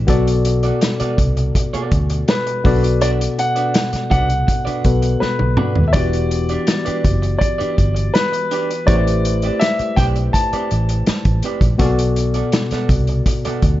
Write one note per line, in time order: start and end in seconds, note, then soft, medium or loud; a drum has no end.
0.07 0.70 B1 loud
0.07 2.60 B2 medium
0.07 2.60 B3 medium
0.07 0.29 B3 medium
0.07 2.61 F#4 medium
0.07 0.30 F#4 medium
0.07 2.61 A4 medium
0.07 0.30 A4 medium
0.07 2.62 D5 medium
0.07 kick loud
0.07 closed hi-hat medium
0.11 0.30 D5 medium
0.27 closed hi-hat medium
0.45 muted clean electric guitar stroke soft
0.45 closed hi-hat medium
0.63 0.79 B3 soft
0.63 0.80 F#4 soft
0.63 0.80 A4 soft
0.63 0.79 D5 medium
0.63 closed hi-hat soft
0.81 muted clean electric guitar stroke soft
0.81 snare loud
0.81 closed hi-hat medium
1.00 1.17 B3 medium
1.00 1.18 F#4 medium
1.00 1.18 A4 medium
1.00 1.19 D5 medium
1.00 muted fingered electric bass stroke soft
1.00 closed hi-hat soft
1.18 1.50 C2 medium
1.18 muted clean electric guitar stroke soft
1.18 kick medium
1.18 closed hi-hat medium
1.37 muted clean electric guitar stroke soft
1.37 closed hi-hat soft
1.55 muted clean electric guitar stroke soft
1.55 kick medium
1.55 closed hi-hat medium
1.73 1.91 B3 soft
1.73 1.91 F#4 medium
1.73 1.92 A4 medium
1.73 1.92 D5 medium
1.73 muted fingered electric bass stroke soft
1.73 closed hi-hat soft
1.91 2.23 D2 medium
1.91 muted clean electric guitar stroke soft
1.91 kick medium
1.91 closed hi-hat medium
2.10 muted clean electric guitar stroke soft
2.10 closed hi-hat soft
2.28 3.04 B4 medium
2.28 muted clean electric guitar stroke soft
2.28 snare loud
2.28 closed hi-hat medium
2.47 muted clean electric guitar stroke soft
2.47 closed hi-hat soft
2.64 3.27 B1 medium
2.64 4.80 B2 medium
2.64 4.80 B3 medium
2.64 2.85 D4 medium
2.64 4.81 F#4 medium
2.64 2.84 F#4 medium
2.64 4.81 A4 medium
2.64 2.83 B4 medium
2.64 4.81 D5 medium
2.64 2.82 D5 medium
2.64 kick medium
2.64 open hi-hat soft
2.83 muted clean electric guitar stroke soft
2.83 closed hi-hat medium
3.01 3.22 D4 medium
3.01 3.21 F#4 medium
3.01 3.20 B4 medium
3.01 3.10 D5 medium
3.01 3.19 D5 medium
3.01 closed hi-hat medium
3.20 muted clean electric guitar stroke soft
3.20 closed hi-hat medium
3.39 4.09 F#5 medium
3.39 muted clean electric guitar stroke soft
3.39 closed hi-hat medium
3.56 3.73 D4 soft
3.56 3.72 F#4 soft
3.56 3.72 B4 soft
3.56 3.72 D5 soft
3.56 closed hi-hat soft
3.74 muted clean electric guitar stroke soft
3.74 snare loud
3.74 closed hi-hat medium
3.93 muted clean electric guitar stroke soft
3.93 muted fingered electric bass stroke soft
3.93 snare soft
3.93 closed hi-hat soft
4.10 4.43 C2 medium
4.10 4.31 D4 medium
4.10 4.29 F#4 medium
4.10 4.28 B4 medium
4.10 4.28 D5 medium
4.10 5.24 F#5 medium
4.10 kick medium
4.10 closed hi-hat medium
4.29 muted clean electric guitar stroke soft
4.29 closed hi-hat soft
4.47 muted clean electric guitar stroke soft
4.47 kick medium
4.47 closed hi-hat medium
4.65 4.84 D4 soft
4.65 4.84 F#4 medium
4.65 4.84 B4 medium
4.65 4.85 D5 medium
4.65 muted fingered electric bass stroke soft
4.65 closed hi-hat soft
4.84 5.16 B1 medium
4.84 5.94 B2 soft
4.84 5.93 B3 soft
4.84 5.94 F#4 soft
4.84 5.95 A4 soft
4.84 5.95 B4 soft
4.84 muted clean electric guitar stroke soft
4.84 kick medium
4.84 closed hi-hat medium
5.02 muted clean electric guitar stroke soft
5.02 closed hi-hat medium
5.20 5.83 B4 medium
5.20 muted clean electric guitar stroke soft
5.20 muted fingered electric bass stroke soft
5.20 snare soft
5.39 5.56 B1 medium
5.39 high tom medium
5.57 5.73 D4 soft
5.57 5.74 F#4 medium
5.57 5.74 B4 medium
5.57 5.74 D5 medium
5.57 mid tom medium
5.75 5.92 D#2 medium
5.75 muted clean electric guitar stroke soft
5.75 floor tom medium
5.88 5.95 E5 medium
5.93 6.56 E1 medium
5.93 8.83 E3 medium
5.93 8.83 B3 medium
5.93 6.15 D4 medium
5.93 8.83 F#4 medium
5.93 6.15 G4 medium
5.93 8.84 G4 medium
5.93 6.15 B4 medium
5.93 7.36 D5 medium
5.93 8.84 D5 medium
5.93 kick medium
5.93 closed hi-hat medium
5.97 6.16 D5 medium
6.13 closed hi-hat medium
6.31 muted clean electric guitar stroke soft
6.31 closed hi-hat medium
6.49 6.66 D4 soft
6.49 6.66 G4 soft
6.49 6.66 B4 soft
6.49 6.65 D5 medium
6.49 closed hi-hat soft
6.67 muted clean electric guitar stroke soft
6.67 snare loud
6.67 closed hi-hat medium
6.85 7.03 D4 soft
6.85 7.03 G4 medium
6.85 7.04 B4 medium
6.85 7.04 D5 medium
6.85 muted fingered electric bass stroke soft
6.85 closed hi-hat soft
7.04 7.35 F#1 medium
7.04 muted clean electric guitar stroke soft
7.04 kick medium
7.04 closed hi-hat medium
7.22 muted clean electric guitar stroke soft
7.22 closed hi-hat soft
7.39 8.15 D5 medium
7.39 muted clean electric guitar stroke soft
7.39 kick medium
7.39 closed hi-hat medium
7.58 7.75 D4 soft
7.58 7.76 G4 soft
7.58 7.76 B4 medium
7.58 7.76 D5 medium
7.58 muted fingered electric bass stroke soft
7.58 closed hi-hat soft
7.76 8.09 G1 medium
7.76 muted clean electric guitar stroke soft
7.76 kick medium
7.76 closed hi-hat medium
7.95 muted clean electric guitar stroke soft
7.95 closed hi-hat soft
8.14 8.89 B4 medium
8.14 muted clean electric guitar stroke soft
8.14 snare medium
8.14 closed hi-hat medium
8.32 muted clean electric guitar stroke soft
8.32 closed hi-hat soft
8.51 8.71 D4 medium
8.51 8.71 G4 medium
8.51 8.70 B4 medium
8.51 8.69 D5 medium
8.51 closed hi-hat medium
8.70 muted clean electric guitar stroke soft
8.70 closed hi-hat soft
8.86 9.49 A1 loud
8.86 11.75 A3 medium
8.86 9.07 C4 medium
8.86 11.76 E4 soft
8.86 11.76 G4 soft
8.86 9.07 G4 medium
8.86 11.76 B4 medium
8.86 9.06 B4 medium
8.86 11.77 C5 soft
8.86 8.95 C#5 soft
8.86 9.62 D5 medium
8.86 9.06 D5 medium
8.86 kick loud
8.86 closed hi-hat medium
8.96 11.80 D5 medium
9.07 muted clean electric guitar stroke soft
9.07 closed hi-hat medium
9.25 muted clean electric guitar stroke soft
9.25 closed hi-hat medium
9.42 9.60 C4 soft
9.42 9.59 G4 soft
9.42 9.59 B4 soft
9.42 9.59 D5 soft
9.42 closed hi-hat soft
9.60 9.94 E5 medium
9.60 muted clean electric guitar stroke soft
9.60 snare loud
9.60 closed hi-hat medium
9.79 muted fingered electric bass stroke soft
9.79 muted clean electric guitar stroke soft
9.79 closed hi-hat soft
9.96 10.28 B1 medium
9.96 10.18 C4 medium
9.96 10.17 G4 medium
9.96 10.17 B4 medium
9.96 10.16 D5 medium
9.96 10.05 G5 medium
9.96 kick medium
9.96 closed hi-hat medium
10.16 muted clean electric guitar stroke soft
10.16 closed hi-hat soft
10.33 11.39 A5 medium
10.33 muted clean electric guitar stroke soft
10.33 kick medium
10.33 closed hi-hat medium
10.53 10.70 C4 soft
10.53 10.70 G4 medium
10.53 10.71 B4 medium
10.53 10.71 D5 medium
10.53 muted fingered electric bass stroke soft
10.53 closed hi-hat soft
10.71 11.02 A1 medium
10.71 muted clean electric guitar stroke soft
10.71 closed hi-hat medium
10.89 muted clean electric guitar stroke soft
10.89 closed hi-hat soft
11.06 muted clean electric guitar stroke soft
11.06 muted fingered electric bass stroke soft
11.06 snare medium
11.06 closed hi-hat medium
11.25 11.41 A1 medium
11.25 kick medium
11.25 closed hi-hat soft
11.43 11.59 C4 soft
11.43 11.60 G4 soft
11.43 11.60 B4 medium
11.43 11.60 D5 medium
11.43 closed hi-hat medium
11.61 11.77 A#1 medium
11.61 muted clean electric guitar stroke soft
11.61 kick medium
11.61 closed hi-hat soft
11.78 12.41 B1 loud
11.78 13.80 B2 medium
11.78 13.80 B3 medium
11.78 12.00 B3 medium
11.78 13.80 F#4 medium
11.78 12.01 F#4 medium
11.78 13.80 A4 medium
11.78 12.01 A4 medium
11.78 13.80 D5 medium
11.78 12.01 D5 medium
11.78 kick loud
11.78 closed hi-hat medium
11.99 closed hi-hat medium
12.16 muted clean electric guitar stroke soft
12.16 closed hi-hat medium
12.34 12.51 B3 soft
12.34 12.51 F#4 soft
12.34 12.51 A4 medium
12.34 12.50 D5 medium
12.34 closed hi-hat soft
12.52 muted clean electric guitar stroke soft
12.52 snare loud
12.52 closed hi-hat medium
12.71 12.89 B3 medium
12.71 12.90 F#4 medium
12.71 12.90 A4 medium
12.71 12.90 D5 medium
12.71 muted fingered electric bass stroke soft
12.71 snare soft
12.71 closed hi-hat soft
12.89 13.20 C2 medium
12.89 muted clean electric guitar stroke soft
12.89 kick medium
12.89 closed hi-hat medium
13.07 muted clean electric guitar stroke soft
13.07 closed hi-hat soft
13.26 muted clean electric guitar stroke soft
13.26 kick medium
13.26 closed hi-hat medium
13.45 13.62 B3 medium
13.45 13.62 F#4 medium
13.45 13.63 A4 medium
13.45 13.63 D5 medium
13.45 muted fingered electric bass stroke soft
13.45 closed hi-hat soft
13.62 13.80 D2 medium
13.62 muted clean electric guitar stroke soft
13.62 kick medium
13.62 closed hi-hat medium